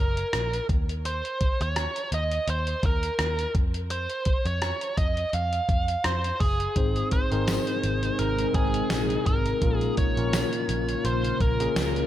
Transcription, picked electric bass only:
0.00 0.23 F#1 medium
0.34 0.59 A#1 medium
0.69 1.21 D#2 loud
1.61 1.86 D#2 medium
2.12 2.38 D#2 medium
2.48 2.73 D#2 loud
2.83 3.09 D#2 medium
3.19 3.45 D#2 medium
3.55 4.06 F2 medium
4.45 4.71 F2 medium
4.98 5.23 F2 medium
5.33 5.59 F2 medium
5.69 5.95 F2 medium
6.05 6.31 F2 medium
6.41 6.66 F#1 medium
6.76 7.02 G#1 medium
7.32 7.57 G#1 medium
7.84 8.09 G#1 medium
8.19 8.45 G#1 medium
8.55 8.80 G#1 medium
8.90 9.16 A#1 medium
9.26 9.52 G#1 medium
9.62 9.88 A#1 loud
10.17 10.43 A#1 medium
10.69 10.95 A#1 medium
11.04 11.30 A#1 medium
11.40 11.66 A#1 medium
11.76 12.02 C#2 medium

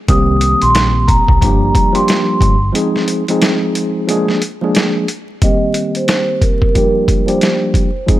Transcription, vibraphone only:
0.10 0.59 D#6 loud
0.62 1.06 C6 medium
1.08 1.38 A#5 medium
1.41 1.92 A#5 medium
1.95 2.71 C6 medium
5.43 5.93 D#5 loud
5.97 6.40 C5 medium
6.76 7.25 A#4 medium
7.27 8.04 C5 medium

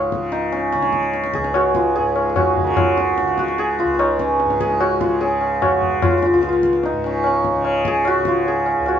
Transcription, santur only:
0.00 0.52 C#4 medium
0.00 1.61 F4 medium
0.00 1.34 G#4 medium
0.32 3.92 D#4 medium
0.52 0.73 C#4 medium
0.73 4.19 C#4 medium
1.35 1.95 G#4 medium
1.55 1.82 F#4 medium
1.76 2.43 F4 medium
1.96 2.29 G#4 medium
2.29 2.70 G#4 medium
2.37 2.73 F#4 medium
2.53 4.94 D#5 soft
2.53 2.80 F5 soft
2.60 5.14 C#5 soft
2.64 5.51 A#4 medium
2.64 5.38 B4 soft
2.70 3.39 F#4 medium
2.70 3.59 G#4 medium
2.78 3.45 F4 medium
3.39 3.86 F#4 medium
3.59 4.60 G#4 medium
3.80 3.94 F4 medium
3.94 4.86 F4 medium
3.99 6.85 D#4 medium
4.20 7.06 C#4 medium
4.61 5.20 G#4 medium
4.80 5.07 F#4 medium
5.01 5.68 F4 medium
5.21 7.87 G#4 medium
5.62 6.09 F#4 medium
6.03 6.10 F4 medium
6.11 6.17 F4 soft
6.18 6.26 F4 medium
6.26 6.33 F4 medium
6.34 6.41 F4 medium
6.42 6.48 F4 medium
6.49 8.13 F4 medium
6.85 8.99 D#4 medium
7.06 7.26 C#4 medium
7.26 8.99 C#4 medium
7.88 8.47 G#4 medium
8.07 8.34 F#4 medium
8.28 8.94 F4 medium
8.48 8.99 G#4 medium
8.88 8.99 F#4 medium

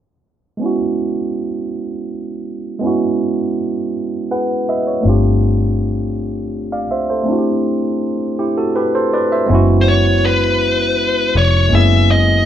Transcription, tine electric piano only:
0.57 2.77 G#3 soft
0.57 2.78 B3 soft
0.61 2.79 C#4 medium
0.61 2.80 E4 soft
0.66 2.81 F#4 medium
2.79 4.99 G#3 medium
2.79 5.00 B3 medium
2.83 5.01 C#4 medium
2.83 5.02 E4 soft
2.83 5.03 F#4 medium
4.31 4.66 G#4 soft
4.31 4.66 B4 medium
4.31 4.65 F#5 medium
4.69 4.86 B4 soft
4.69 4.86 D#5 medium
4.69 5.03 E5 medium
4.87 5.22 C#5 soft
5.01 7.21 A3 medium
5.01 7.22 C4 medium
5.05 7.23 D4 medium
5.05 7.24 F4 medium
5.09 7.25 G4 medium
6.72 6.90 D5 medium
6.72 6.89 F5 medium
6.91 7.08 C5 soft
6.91 7.08 E5 medium
7.10 7.45 A4 soft
7.10 7.44 C5 medium
7.24 9.43 A3 medium
7.24 9.44 C4 medium
7.28 9.45 D4 medium
7.28 8.37 E4 medium
7.32 7.36 F#4 medium
7.38 8.38 G4 medium
8.39 8.56 E4 soft
8.39 8.56 G4 medium
8.58 8.75 F#4 soft
8.58 8.74 A4 medium
8.76 8.93 G4 medium
8.76 8.93 B4 medium
8.95 9.12 A4 soft
8.95 9.12 C5 medium
9.14 9.31 B4 soft
9.14 9.30 D5 medium
9.32 9.67 C5 soft
9.32 9.66 E5 medium
9.46 11.66 G#3 medium
9.46 11.67 B3 medium
9.51 11.68 C#4 medium
9.51 11.69 E4 medium
9.51 11.70 F#4 medium
11.69 12.45 G#3 medium
11.69 11.77 A#3 soft
11.73 12.45 C#4 medium
11.73 12.45 E4 soft
11.77 12.45 B3 soft
11.77 12.45 G#4 medium

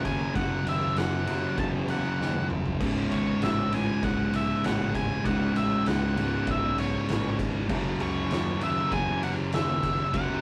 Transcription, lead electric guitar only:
0.05 0.35 G#5 loud
0.35 0.64 F#5 loud
0.69 0.99 E5 loud
0.98 1.59 F#5 loud
1.59 1.68 A5 loud
1.90 2.47 F#5 medium
3.11 3.43 C#5 medium
3.43 3.74 E5 loud
3.74 4.04 G#5 loud
4.04 4.35 F#5 medium
4.36 4.66 E5 medium
4.65 4.95 F#5 medium
4.95 5.26 G#5 loud
5.26 5.57 F#5 loud
5.57 5.88 E5 loud
5.87 6.50 F#5 loud
6.51 6.79 E5 medium
6.79 7.36 C#5 medium
8.02 8.63 C#5 loud
8.63 8.94 E5 loud
8.92 9.23 G#5 loud
9.24 9.32 F#5 medium
9.54 10.16 E5 loud
10.13 10.41 F#5 medium

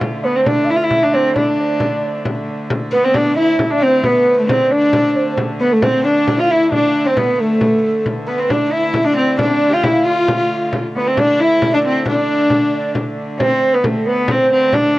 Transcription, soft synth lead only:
0.23 0.34 B4 medium
0.35 0.47 C5 medium
0.46 0.66 D5 medium
0.64 0.81 E5 medium
0.64 0.69 F5 medium
0.82 1.15 E5 medium
1.13 1.35 C5 medium
1.35 2.21 D5 medium
2.93 3.03 B4 medium
3.03 3.16 C5 medium
3.14 3.38 D5 medium
3.36 3.83 E5 medium
3.81 4.03 C5 medium
4.04 4.50 B4 medium
4.48 4.73 C5 medium
4.71 5.10 D5 medium
5.10 5.17 D5 soft
5.15 5.38 C5 medium
5.60 5.73 B4 medium
5.72 5.83 A4 medium
5.82 6.05 C5 medium
6.04 6.40 D5 medium
6.39 6.51 F5 medium
6.50 6.71 E5 medium
6.72 7.07 D5 medium
7.05 7.16 C5 medium
7.16 7.40 B4 medium
7.39 8.06 A4 medium
8.27 8.52 B4 medium
8.51 8.73 D5 medium
8.72 9.07 E5 medium
9.06 9.39 D5 medium
9.40 9.74 D5 medium
9.73 10.06 F5 medium
10.06 10.69 F5 medium
10.96 11.09 B4 medium
11.07 11.20 C5 medium
11.19 11.43 D5 medium
11.41 11.75 E5 medium
11.73 12.06 D5 medium
12.06 12.91 D5 medium
13.39 13.74 C5 medium
13.72 13.85 B4 medium
13.84 14.07 A4 medium
14.06 14.31 B4 medium
14.29 14.50 C5 medium
14.51 14.74 C5 medium
14.73 14.99 D5 medium

